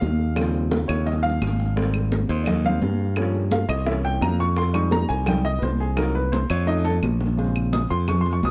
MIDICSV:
0, 0, Header, 1, 4, 480
1, 0, Start_track
1, 0, Key_signature, -4, "minor"
1, 0, Tempo, 350672
1, 504, Time_signature, 4, 2, 24, 8
1, 11647, End_track
2, 0, Start_track
2, 0, Title_t, "Grand piano"
2, 0, Program_c, 0, 0
2, 0, Note_on_c, 0, 77, 114
2, 445, Note_off_c, 0, 77, 0
2, 487, Note_on_c, 0, 49, 56
2, 488, Note_on_c, 0, 53, 57
2, 491, Note_on_c, 0, 55, 47
2, 496, Note_on_c, 0, 60, 64
2, 1203, Note_on_c, 0, 73, 86
2, 1445, Note_off_c, 0, 73, 0
2, 1455, Note_on_c, 0, 75, 81
2, 1680, Note_on_c, 0, 77, 104
2, 1691, Note_off_c, 0, 75, 0
2, 2359, Note_off_c, 0, 49, 0
2, 2359, Note_off_c, 0, 53, 0
2, 2359, Note_off_c, 0, 77, 0
2, 2361, Note_off_c, 0, 55, 0
2, 2363, Note_off_c, 0, 60, 0
2, 2409, Note_on_c, 0, 55, 55
2, 2413, Note_on_c, 0, 58, 53
2, 2420, Note_on_c, 0, 60, 69
2, 3098, Note_off_c, 0, 55, 0
2, 3100, Note_off_c, 0, 58, 0
2, 3104, Note_off_c, 0, 60, 0
2, 3144, Note_on_c, 0, 72, 70
2, 3324, Note_on_c, 0, 74, 52
2, 3358, Note_off_c, 0, 74, 0
2, 3375, Note_off_c, 0, 72, 0
2, 3386, Note_on_c, 0, 75, 72
2, 3616, Note_off_c, 0, 75, 0
2, 3629, Note_on_c, 0, 55, 49
2, 3633, Note_on_c, 0, 58, 48
2, 3636, Note_on_c, 0, 77, 98
2, 3641, Note_on_c, 0, 60, 63
2, 3840, Note_off_c, 0, 55, 0
2, 3843, Note_off_c, 0, 58, 0
2, 3847, Note_off_c, 0, 60, 0
2, 4297, Note_off_c, 0, 77, 0
2, 4334, Note_on_c, 0, 53, 58
2, 4345, Note_on_c, 0, 58, 49
2, 4356, Note_on_c, 0, 61, 70
2, 4655, Note_off_c, 0, 53, 0
2, 4661, Note_off_c, 0, 58, 0
2, 4667, Note_off_c, 0, 61, 0
2, 4817, Note_on_c, 0, 77, 78
2, 5046, Note_on_c, 0, 75, 93
2, 5050, Note_off_c, 0, 77, 0
2, 5276, Note_on_c, 0, 52, 55
2, 5284, Note_off_c, 0, 75, 0
2, 5284, Note_on_c, 0, 58, 53
2, 5290, Note_on_c, 0, 76, 85
2, 5292, Note_on_c, 0, 61, 63
2, 5527, Note_off_c, 0, 76, 0
2, 5539, Note_on_c, 0, 79, 106
2, 5771, Note_off_c, 0, 79, 0
2, 5779, Note_on_c, 0, 82, 95
2, 5970, Note_off_c, 0, 52, 0
2, 5974, Note_off_c, 0, 58, 0
2, 5978, Note_off_c, 0, 61, 0
2, 6011, Note_off_c, 0, 82, 0
2, 6025, Note_on_c, 0, 85, 118
2, 6254, Note_off_c, 0, 85, 0
2, 6264, Note_on_c, 0, 84, 94
2, 6480, Note_on_c, 0, 55, 62
2, 6493, Note_off_c, 0, 84, 0
2, 6495, Note_on_c, 0, 56, 51
2, 6495, Note_on_c, 0, 85, 109
2, 6500, Note_on_c, 0, 63, 62
2, 6729, Note_off_c, 0, 85, 0
2, 6736, Note_on_c, 0, 82, 102
2, 6963, Note_on_c, 0, 80, 94
2, 6969, Note_off_c, 0, 82, 0
2, 7172, Note_off_c, 0, 55, 0
2, 7180, Note_off_c, 0, 56, 0
2, 7183, Note_off_c, 0, 63, 0
2, 7203, Note_off_c, 0, 80, 0
2, 7222, Note_on_c, 0, 55, 52
2, 7226, Note_on_c, 0, 56, 45
2, 7229, Note_on_c, 0, 63, 54
2, 7234, Note_on_c, 0, 79, 87
2, 7435, Note_off_c, 0, 55, 0
2, 7438, Note_off_c, 0, 56, 0
2, 7439, Note_off_c, 0, 63, 0
2, 7456, Note_on_c, 0, 75, 99
2, 7458, Note_off_c, 0, 79, 0
2, 7648, Note_on_c, 0, 71, 52
2, 7681, Note_off_c, 0, 71, 0
2, 7690, Note_off_c, 0, 75, 0
2, 7704, Note_on_c, 0, 72, 77
2, 7933, Note_off_c, 0, 72, 0
2, 7945, Note_on_c, 0, 68, 78
2, 8156, Note_on_c, 0, 54, 62
2, 8170, Note_on_c, 0, 58, 53
2, 8174, Note_off_c, 0, 68, 0
2, 8175, Note_on_c, 0, 70, 80
2, 8181, Note_on_c, 0, 63, 65
2, 8409, Note_off_c, 0, 70, 0
2, 8420, Note_on_c, 0, 71, 85
2, 8485, Note_off_c, 0, 54, 0
2, 8493, Note_off_c, 0, 58, 0
2, 8499, Note_off_c, 0, 63, 0
2, 8652, Note_off_c, 0, 71, 0
2, 8653, Note_on_c, 0, 72, 87
2, 8888, Note_off_c, 0, 72, 0
2, 8898, Note_on_c, 0, 73, 87
2, 9118, Note_on_c, 0, 57, 59
2, 9131, Note_off_c, 0, 73, 0
2, 9134, Note_on_c, 0, 61, 52
2, 9134, Note_on_c, 0, 75, 93
2, 9138, Note_on_c, 0, 63, 65
2, 9369, Note_off_c, 0, 75, 0
2, 9370, Note_on_c, 0, 69, 96
2, 9447, Note_off_c, 0, 57, 0
2, 9455, Note_off_c, 0, 61, 0
2, 9458, Note_off_c, 0, 63, 0
2, 9517, Note_off_c, 0, 69, 0
2, 10090, Note_on_c, 0, 49, 61
2, 10099, Note_on_c, 0, 56, 51
2, 10112, Note_on_c, 0, 60, 60
2, 10579, Note_on_c, 0, 87, 85
2, 10780, Note_off_c, 0, 49, 0
2, 10785, Note_off_c, 0, 56, 0
2, 10792, Note_off_c, 0, 60, 0
2, 10813, Note_off_c, 0, 87, 0
2, 10819, Note_on_c, 0, 84, 97
2, 11054, Note_off_c, 0, 84, 0
2, 11068, Note_on_c, 0, 85, 99
2, 11221, Note_off_c, 0, 85, 0
2, 11237, Note_on_c, 0, 84, 89
2, 11386, Note_off_c, 0, 84, 0
2, 11399, Note_on_c, 0, 85, 93
2, 11547, Note_off_c, 0, 85, 0
2, 11567, Note_on_c, 0, 87, 101
2, 11647, Note_off_c, 0, 87, 0
2, 11647, End_track
3, 0, Start_track
3, 0, Title_t, "Fingered electric bass"
3, 0, Program_c, 1, 33
3, 28, Note_on_c, 1, 39, 82
3, 1146, Note_off_c, 1, 39, 0
3, 1222, Note_on_c, 1, 39, 106
3, 1891, Note_off_c, 1, 39, 0
3, 1941, Note_on_c, 1, 32, 89
3, 3061, Note_off_c, 1, 32, 0
3, 3139, Note_on_c, 1, 39, 112
3, 3808, Note_off_c, 1, 39, 0
3, 3855, Note_on_c, 1, 43, 92
3, 4977, Note_off_c, 1, 43, 0
3, 5048, Note_on_c, 1, 36, 110
3, 5722, Note_off_c, 1, 36, 0
3, 5767, Note_on_c, 1, 41, 92
3, 6893, Note_off_c, 1, 41, 0
3, 6980, Note_on_c, 1, 36, 103
3, 7648, Note_off_c, 1, 36, 0
3, 7695, Note_on_c, 1, 36, 91
3, 8818, Note_off_c, 1, 36, 0
3, 8899, Note_on_c, 1, 41, 109
3, 9569, Note_off_c, 1, 41, 0
3, 9615, Note_on_c, 1, 34, 90
3, 10741, Note_off_c, 1, 34, 0
3, 10824, Note_on_c, 1, 41, 102
3, 11494, Note_off_c, 1, 41, 0
3, 11538, Note_on_c, 1, 36, 84
3, 11647, Note_off_c, 1, 36, 0
3, 11647, End_track
4, 0, Start_track
4, 0, Title_t, "Drums"
4, 15, Note_on_c, 9, 60, 36
4, 15, Note_on_c, 9, 61, 88
4, 25, Note_on_c, 9, 63, 83
4, 152, Note_off_c, 9, 60, 0
4, 152, Note_off_c, 9, 61, 0
4, 162, Note_off_c, 9, 63, 0
4, 260, Note_on_c, 9, 60, 33
4, 271, Note_on_c, 9, 63, 33
4, 397, Note_off_c, 9, 60, 0
4, 408, Note_off_c, 9, 63, 0
4, 497, Note_on_c, 9, 60, 77
4, 507, Note_on_c, 9, 75, 69
4, 515, Note_on_c, 9, 63, 33
4, 633, Note_off_c, 9, 60, 0
4, 644, Note_off_c, 9, 75, 0
4, 652, Note_off_c, 9, 63, 0
4, 738, Note_on_c, 9, 60, 30
4, 750, Note_on_c, 9, 63, 36
4, 875, Note_off_c, 9, 60, 0
4, 886, Note_off_c, 9, 63, 0
4, 977, Note_on_c, 9, 60, 99
4, 983, Note_on_c, 9, 63, 91
4, 1114, Note_off_c, 9, 60, 0
4, 1120, Note_off_c, 9, 63, 0
4, 1220, Note_on_c, 9, 75, 82
4, 1221, Note_on_c, 9, 60, 86
4, 1229, Note_on_c, 9, 63, 35
4, 1356, Note_off_c, 9, 75, 0
4, 1358, Note_off_c, 9, 60, 0
4, 1366, Note_off_c, 9, 63, 0
4, 1458, Note_on_c, 9, 63, 36
4, 1460, Note_on_c, 9, 61, 92
4, 1595, Note_off_c, 9, 63, 0
4, 1597, Note_off_c, 9, 61, 0
4, 1697, Note_on_c, 9, 63, 35
4, 1700, Note_on_c, 9, 61, 101
4, 1834, Note_off_c, 9, 63, 0
4, 1836, Note_off_c, 9, 61, 0
4, 1938, Note_on_c, 9, 63, 77
4, 1941, Note_on_c, 9, 61, 105
4, 1943, Note_on_c, 9, 75, 66
4, 2075, Note_off_c, 9, 63, 0
4, 2078, Note_off_c, 9, 61, 0
4, 2080, Note_off_c, 9, 75, 0
4, 2187, Note_on_c, 9, 61, 71
4, 2190, Note_on_c, 9, 63, 31
4, 2323, Note_off_c, 9, 61, 0
4, 2327, Note_off_c, 9, 63, 0
4, 2425, Note_on_c, 9, 60, 76
4, 2428, Note_on_c, 9, 63, 35
4, 2562, Note_off_c, 9, 60, 0
4, 2564, Note_off_c, 9, 63, 0
4, 2653, Note_on_c, 9, 75, 67
4, 2668, Note_on_c, 9, 63, 35
4, 2672, Note_on_c, 9, 60, 35
4, 2789, Note_off_c, 9, 75, 0
4, 2805, Note_off_c, 9, 63, 0
4, 2809, Note_off_c, 9, 60, 0
4, 2900, Note_on_c, 9, 63, 82
4, 2904, Note_on_c, 9, 60, 68
4, 3037, Note_off_c, 9, 63, 0
4, 3041, Note_off_c, 9, 60, 0
4, 3155, Note_on_c, 9, 60, 38
4, 3292, Note_off_c, 9, 60, 0
4, 3370, Note_on_c, 9, 75, 71
4, 3385, Note_on_c, 9, 60, 68
4, 3387, Note_on_c, 9, 63, 37
4, 3387, Note_on_c, 9, 64, 83
4, 3507, Note_off_c, 9, 75, 0
4, 3522, Note_off_c, 9, 60, 0
4, 3524, Note_off_c, 9, 63, 0
4, 3524, Note_off_c, 9, 64, 0
4, 3622, Note_on_c, 9, 63, 32
4, 3622, Note_on_c, 9, 64, 70
4, 3759, Note_off_c, 9, 63, 0
4, 3759, Note_off_c, 9, 64, 0
4, 3859, Note_on_c, 9, 63, 85
4, 3861, Note_on_c, 9, 60, 38
4, 3861, Note_on_c, 9, 61, 88
4, 3995, Note_off_c, 9, 63, 0
4, 3998, Note_off_c, 9, 60, 0
4, 3998, Note_off_c, 9, 61, 0
4, 4097, Note_on_c, 9, 60, 38
4, 4109, Note_on_c, 9, 63, 34
4, 4234, Note_off_c, 9, 60, 0
4, 4246, Note_off_c, 9, 63, 0
4, 4327, Note_on_c, 9, 75, 71
4, 4336, Note_on_c, 9, 60, 69
4, 4340, Note_on_c, 9, 63, 35
4, 4464, Note_off_c, 9, 75, 0
4, 4473, Note_off_c, 9, 60, 0
4, 4477, Note_off_c, 9, 63, 0
4, 4577, Note_on_c, 9, 60, 34
4, 4579, Note_on_c, 9, 63, 36
4, 4714, Note_off_c, 9, 60, 0
4, 4716, Note_off_c, 9, 63, 0
4, 4809, Note_on_c, 9, 63, 93
4, 4820, Note_on_c, 9, 60, 67
4, 4946, Note_off_c, 9, 63, 0
4, 4957, Note_off_c, 9, 60, 0
4, 5053, Note_on_c, 9, 60, 39
4, 5055, Note_on_c, 9, 63, 36
4, 5057, Note_on_c, 9, 75, 78
4, 5190, Note_off_c, 9, 60, 0
4, 5192, Note_off_c, 9, 63, 0
4, 5194, Note_off_c, 9, 75, 0
4, 5291, Note_on_c, 9, 60, 74
4, 5301, Note_on_c, 9, 63, 33
4, 5428, Note_off_c, 9, 60, 0
4, 5438, Note_off_c, 9, 63, 0
4, 5543, Note_on_c, 9, 63, 35
4, 5679, Note_off_c, 9, 63, 0
4, 5770, Note_on_c, 9, 60, 38
4, 5770, Note_on_c, 9, 61, 95
4, 5779, Note_on_c, 9, 63, 78
4, 5781, Note_on_c, 9, 75, 69
4, 5907, Note_off_c, 9, 60, 0
4, 5907, Note_off_c, 9, 61, 0
4, 5916, Note_off_c, 9, 63, 0
4, 5918, Note_off_c, 9, 75, 0
4, 6006, Note_on_c, 9, 60, 38
4, 6027, Note_on_c, 9, 63, 35
4, 6143, Note_off_c, 9, 60, 0
4, 6164, Note_off_c, 9, 63, 0
4, 6249, Note_on_c, 9, 60, 69
4, 6266, Note_on_c, 9, 63, 35
4, 6386, Note_off_c, 9, 60, 0
4, 6402, Note_off_c, 9, 63, 0
4, 6481, Note_on_c, 9, 60, 35
4, 6491, Note_on_c, 9, 75, 72
4, 6505, Note_on_c, 9, 63, 35
4, 6618, Note_off_c, 9, 60, 0
4, 6628, Note_off_c, 9, 75, 0
4, 6642, Note_off_c, 9, 63, 0
4, 6724, Note_on_c, 9, 60, 70
4, 6739, Note_on_c, 9, 63, 92
4, 6861, Note_off_c, 9, 60, 0
4, 6876, Note_off_c, 9, 63, 0
4, 6962, Note_on_c, 9, 60, 38
4, 7099, Note_off_c, 9, 60, 0
4, 7204, Note_on_c, 9, 60, 72
4, 7214, Note_on_c, 9, 75, 69
4, 7226, Note_on_c, 9, 63, 34
4, 7226, Note_on_c, 9, 64, 93
4, 7341, Note_off_c, 9, 60, 0
4, 7351, Note_off_c, 9, 75, 0
4, 7363, Note_off_c, 9, 63, 0
4, 7363, Note_off_c, 9, 64, 0
4, 7461, Note_on_c, 9, 63, 36
4, 7597, Note_off_c, 9, 63, 0
4, 7696, Note_on_c, 9, 60, 38
4, 7696, Note_on_c, 9, 61, 96
4, 7704, Note_on_c, 9, 63, 86
4, 7832, Note_off_c, 9, 60, 0
4, 7832, Note_off_c, 9, 61, 0
4, 7841, Note_off_c, 9, 63, 0
4, 7934, Note_on_c, 9, 60, 33
4, 7946, Note_on_c, 9, 63, 31
4, 8071, Note_off_c, 9, 60, 0
4, 8082, Note_off_c, 9, 63, 0
4, 8171, Note_on_c, 9, 60, 73
4, 8173, Note_on_c, 9, 75, 65
4, 8180, Note_on_c, 9, 63, 32
4, 8308, Note_off_c, 9, 60, 0
4, 8310, Note_off_c, 9, 75, 0
4, 8317, Note_off_c, 9, 63, 0
4, 8423, Note_on_c, 9, 60, 35
4, 8426, Note_on_c, 9, 63, 38
4, 8560, Note_off_c, 9, 60, 0
4, 8563, Note_off_c, 9, 63, 0
4, 8664, Note_on_c, 9, 60, 96
4, 8664, Note_on_c, 9, 63, 100
4, 8801, Note_off_c, 9, 60, 0
4, 8801, Note_off_c, 9, 63, 0
4, 8895, Note_on_c, 9, 75, 81
4, 8907, Note_on_c, 9, 63, 38
4, 9032, Note_off_c, 9, 75, 0
4, 9044, Note_off_c, 9, 63, 0
4, 9150, Note_on_c, 9, 63, 36
4, 9287, Note_off_c, 9, 63, 0
4, 9376, Note_on_c, 9, 61, 83
4, 9388, Note_on_c, 9, 63, 37
4, 9513, Note_off_c, 9, 61, 0
4, 9525, Note_off_c, 9, 63, 0
4, 9620, Note_on_c, 9, 75, 69
4, 9627, Note_on_c, 9, 63, 88
4, 9757, Note_off_c, 9, 75, 0
4, 9764, Note_off_c, 9, 63, 0
4, 9862, Note_on_c, 9, 61, 103
4, 9870, Note_on_c, 9, 63, 34
4, 9999, Note_off_c, 9, 61, 0
4, 10007, Note_off_c, 9, 63, 0
4, 10111, Note_on_c, 9, 56, 110
4, 10112, Note_on_c, 9, 63, 34
4, 10248, Note_off_c, 9, 56, 0
4, 10249, Note_off_c, 9, 63, 0
4, 10345, Note_on_c, 9, 75, 69
4, 10352, Note_on_c, 9, 63, 36
4, 10481, Note_off_c, 9, 75, 0
4, 10489, Note_off_c, 9, 63, 0
4, 10584, Note_on_c, 9, 63, 97
4, 10588, Note_on_c, 9, 56, 75
4, 10721, Note_off_c, 9, 63, 0
4, 10725, Note_off_c, 9, 56, 0
4, 11058, Note_on_c, 9, 75, 67
4, 11059, Note_on_c, 9, 56, 102
4, 11067, Note_on_c, 9, 63, 39
4, 11067, Note_on_c, 9, 64, 84
4, 11195, Note_off_c, 9, 75, 0
4, 11196, Note_off_c, 9, 56, 0
4, 11204, Note_off_c, 9, 63, 0
4, 11204, Note_off_c, 9, 64, 0
4, 11305, Note_on_c, 9, 63, 35
4, 11306, Note_on_c, 9, 56, 73
4, 11442, Note_off_c, 9, 63, 0
4, 11443, Note_off_c, 9, 56, 0
4, 11543, Note_on_c, 9, 63, 81
4, 11547, Note_on_c, 9, 56, 70
4, 11647, Note_off_c, 9, 56, 0
4, 11647, Note_off_c, 9, 63, 0
4, 11647, End_track
0, 0, End_of_file